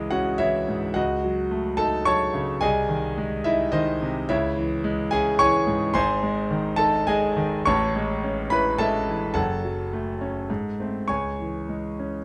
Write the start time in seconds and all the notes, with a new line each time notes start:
Already playing: C#2 E3 G#3 G#4 E5 G#5
0.11 C#4 F#4 F#5
0.38 E3 E4 C#5 E5
0.68 G#2
0.94 C#2 F#4 D#5 F#5
1.24 F#3
1.51 A3
1.77 D#4 A4 A5
2.05 F#3 C#5 A5 C#6
2.34 C#3
2.61 C2 G#4 D#5 G#5
2.89 D#3
3.17 G#3
3.44 D#4 E4 E5
3.72 D#3 D#4 C5 D#5
4.02 C3
4.29 C#2 E4 C#5 E5
4.57 E3
4.84 G#3
5.11 C#4 G#4 G#5
5.39 E3 C#5 G#5 C#6
5.67 G#2
5.94 G#1 G#2 C5 G#5 C6
6.23 G#3
6.51 D#3
6.76 D#4 A4 A5
7.07 G#3 G#4 D#5 G#5
7.37 D#3
7.65 A1 A2 C#5 A5 C#6
7.96 G#3
8.24 C#4
8.50 E4 B4 B5
8.79 G#3 A4 E5 A5
9.07 E3
9.34 F#1 F#2 A4 F#5 A5
9.64 F#3
9.93 A3
10.21 C#4
10.50 G#2
10.80 A3 C4
11.08 C#2 C#5 G#5 C#6
11.39 E3
11.69 G#3
11.99 C#4